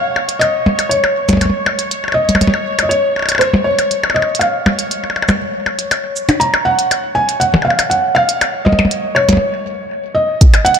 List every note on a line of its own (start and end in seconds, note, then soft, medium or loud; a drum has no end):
0.00 9.41 C#5 medium
0.00 0.37 F5 medium
0.16 percussion blips soft
0.29 closed hi-hat medium
0.39 0.92 D#5 medium
0.39 closed hi-hat soft
0.39 percussion blips medium
0.66 percussion blips medium
0.79 closed hi-hat medium
0.79 percussion blips soft
0.89 2.19 C#5 medium
0.89 closed hi-hat soft
1.04 percussion blips medium
1.29 closed hi-hat medium
1.29 percussion blips medium
1.29 shaker medium
1.33 percussion blips medium
1.37 percussion blips soft
1.41 closed hi-hat soft
1.41 percussion blips soft
1.45 percussion blips soft
1.50 percussion blips soft
1.66 percussion blips medium
1.79 closed hi-hat medium
1.91 closed hi-hat soft
2.04 percussion blips soft
2.08 percussion blips soft
2.12 2.81 D#5 medium
2.12 percussion blips soft
2.29 closed hi-hat medium
2.29 percussion blips soft
2.35 percussion blips soft
2.35 percussion blips medium
2.41 closed hi-hat soft
2.41 percussion blips medium
2.47 percussion blips medium
2.54 percussion blips soft
2.79 closed hi-hat medium
2.79 percussion blips medium
2.83 2.90 D#5 medium
2.89 3.42 C#5 medium
2.89 closed hi-hat soft
3.16 percussion blips soft
3.19 percussion blips soft
3.22 percussion blips soft
3.26 closed hi-hat medium
3.26 percussion blips soft
3.29 percussion blips soft
3.32 percussion blips soft
3.35 percussion blips soft
3.38 3.66 C5 medium
3.38 closed hi-hat soft
3.38 percussion blips soft
3.41 percussion blips medium
3.54 percussion blips medium
3.64 4.17 C#5 medium
3.79 closed hi-hat medium
3.79 percussion blips soft
3.91 closed hi-hat soft
4.04 percussion blips medium
4.10 percussion blips medium
4.14 4.41 D#5 medium
4.14 percussion blips soft
4.22 percussion blips soft
4.35 closed hi-hat medium
4.39 5.36 F5 medium
4.39 closed hi-hat soft
4.39 percussion blips soft
4.66 percussion blips medium
4.79 closed hi-hat medium
4.91 closed hi-hat soft
5.04 percussion blips soft
5.10 percussion blips soft
5.16 percussion blips soft
5.22 percussion blips soft
5.29 percussion blips medium
5.29 shaker medium
5.66 percussion blips soft
5.79 closed hi-hat medium
5.91 closed hi-hat soft
5.91 percussion blips medium
6.16 shaker medium
6.29 closed hi-hat medium
6.29 percussion blips medium
6.29 percussion blips soft
6.40 6.66 A#5 loud
6.40 closed hi-hat soft
6.54 percussion blips medium
6.65 7.17 F#5 loud
6.79 closed hi-hat medium
6.91 closed hi-hat soft
6.91 percussion blips soft
7.15 7.41 G#5 medium
7.29 closed hi-hat medium
7.40 7.46 F#5 medium
7.40 closed hi-hat soft
7.54 percussion blips medium
7.54 percussion blips soft
7.62 7.91 F5 medium
7.62 percussion blips soft
7.70 percussion blips soft
7.79 closed hi-hat medium
7.79 percussion blips medium
7.90 8.16 F#5 medium
7.90 closed hi-hat soft
8.15 8.67 F5 loud
8.15 percussion blips soft
8.29 closed hi-hat medium
8.41 closed hi-hat soft
8.41 percussion blips medium
8.65 9.17 D#5 medium
8.65 percussion blips medium
8.72 percussion blips medium
8.79 percussion blips medium
8.79 percussion blips soft
8.85 percussion blips soft
8.91 closed hi-hat soft
9.15 10.12 C#5 medium
9.15 percussion blips medium
9.29 closed hi-hat medium
9.29 percussion blips medium
9.33 percussion blips medium
9.37 percussion blips soft
10.15 10.67 D#5 medium
10.41 kick loud
10.41 closed hi-hat loud
10.54 closed hi-hat soft
10.54 percussion blips medium
10.65 10.79 F#5 loud
10.65 closed hi-hat medium
10.74 closed hi-hat medium